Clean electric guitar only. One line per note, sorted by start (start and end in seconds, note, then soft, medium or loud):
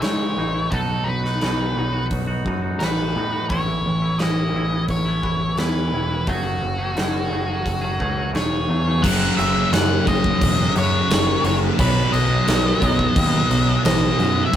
0.01 0.69 C#3 medium
0.01 0.35 E3 medium
0.01 0.36 G#3 medium
0.01 0.37 D#4 medium
0.01 0.38 E4 medium
0.36 0.69 E3 medium
0.36 0.56 G#3 medium
0.36 0.54 D#4 medium
0.36 0.53 E4 medium
0.54 0.71 G#3 medium
0.54 0.70 D#4 medium
0.54 0.69 E4 medium
0.71 1.23 B2 medium
0.71 1.24 F#3 medium
0.71 0.91 B3 medium
0.71 0.90 D#4 medium
0.71 0.88 F#4 medium
0.89 1.26 B3 medium
0.89 1.24 D#4 medium
0.89 1.22 F#4 medium
1.23 1.42 B3 soft
1.23 1.42 D#4 medium
1.23 1.43 F#4 medium
1.41 2.10 B2 medium
1.41 1.74 F#3 medium
1.41 1.76 B3 medium
1.41 1.76 D#4 medium
1.41 1.77 F#4 medium
1.75 2.28 F#3 medium
1.75 1.95 B3 medium
1.75 1.93 D#4 medium
1.75 1.91 F#4 medium
1.93 2.29 B3 medium
1.93 2.28 D#4 medium
1.93 2.26 F#4 medium
2.27 2.45 B3 medium
2.27 2.46 D#4 medium
2.27 2.47 F#4 medium
2.46 2.79 F#3 medium
2.46 2.64 B3 medium
2.46 2.63 D#4 medium
2.46 2.61 F#4 medium
2.62 2.80 B3 medium
2.62 2.81 D#4 medium
2.62 2.82 F#4 medium
2.79 3.47 B2 medium
2.79 3.13 F#3 medium
2.79 3.14 B3 medium
2.79 3.15 D#4 medium
2.79 3.16 F#4 medium
3.14 3.47 F#3 medium
3.14 3.34 B3 medium
3.14 3.33 D#4 medium
3.14 3.31 F#4 medium
3.32 3.49 B3 soft
3.32 3.48 D#4 medium
3.32 3.47 F#4 medium
3.49 4.01 A2 medium
3.49 4.02 E3 medium
3.49 3.69 B3 medium
3.49 3.68 C#4 medium
3.49 3.66 E4 medium
3.67 4.03 B3 medium
3.67 4.03 C#4 medium
3.67 4.01 E4 medium
4.02 4.19 B3 medium
4.02 4.21 C#4 medium
4.02 4.20 E4 medium
4.19 4.88 A2 medium
4.19 4.52 E3 medium
4.19 4.53 B3 medium
4.19 4.55 C#4 medium
4.19 4.55 E4 medium
4.53 5.05 E3 medium
4.53 4.72 B3 medium
4.53 4.71 C#4 medium
4.53 4.69 E4 medium
4.70 5.07 B3 medium
4.70 5.06 C#4 medium
4.70 5.04 E4 medium
5.05 5.22 B3 medium
5.05 5.24 C#4 medium
5.05 5.24 E4 medium
5.23 5.56 E3 medium
5.23 5.41 B3 medium
5.23 5.41 C#4 medium
5.23 5.38 E4 medium
5.40 5.57 B3 medium
5.40 5.58 C#4 medium
5.40 5.58 E4 medium
5.56 6.24 A2 medium
5.56 5.91 E3 medium
5.56 5.92 B3 medium
5.56 5.93 C#4 medium
5.56 5.93 E4 medium
5.92 6.24 E3 medium
5.92 6.11 B3 medium
5.92 6.10 C#4 medium
5.92 6.08 E4 medium
6.09 6.26 B3 medium
6.09 6.28 C#4 medium
6.09 6.24 E4 medium
6.26 6.78 F#2 medium
6.26 6.79 C#3 medium
6.26 6.45 F#3 medium
6.26 6.44 A3 medium
6.26 6.43 C#4 medium
6.26 6.42 G#4 loud
6.43 6.80 F#3 medium
6.43 6.79 A3 medium
6.43 6.78 C#4 medium
6.43 6.77 G#4 medium
6.78 6.96 F#3 soft
6.78 6.96 A3 medium
6.78 6.96 C#4 medium
6.78 6.97 G#4 medium
6.95 7.65 F#2 medium
6.95 7.65 C#3 medium
6.95 7.29 F#3 medium
6.95 7.30 A3 medium
6.95 7.31 C#4 medium
6.95 7.32 G#4 medium
7.30 7.48 F#3 medium
7.30 7.48 A3 medium
7.30 7.47 C#4 medium
7.30 7.46 G#4 medium
7.47 7.83 F#3 medium
7.47 7.82 A3 medium
7.47 7.82 C#4 medium
7.47 7.80 G#4 medium
7.81 7.97 F#3 medium
7.81 7.98 A3 medium
7.81 7.99 C#4 medium
7.81 8.00 G#4 medium
7.98 8.17 F#3 medium
7.98 8.16 A3 medium
7.98 8.15 C#4 medium
7.98 8.14 G#4 medium
8.15 8.33 F#3 soft
8.15 8.33 A3 medium
8.15 8.33 C#4 medium
8.15 8.34 G#4 medium
8.32 9.00 F#2 medium
8.32 9.00 C#3 medium
8.32 8.67 F#3 medium
8.32 8.67 A3 medium
8.32 8.68 C#4 medium
8.32 8.69 G#4 medium
8.68 8.87 F#3 medium
8.68 8.86 A3 medium
8.68 8.85 C#4 medium
8.68 8.84 G#4 medium
8.85 9.02 F#3 soft
8.85 9.02 A3 medium
8.85 9.01 C#4 medium
8.85 9.01 G#4 medium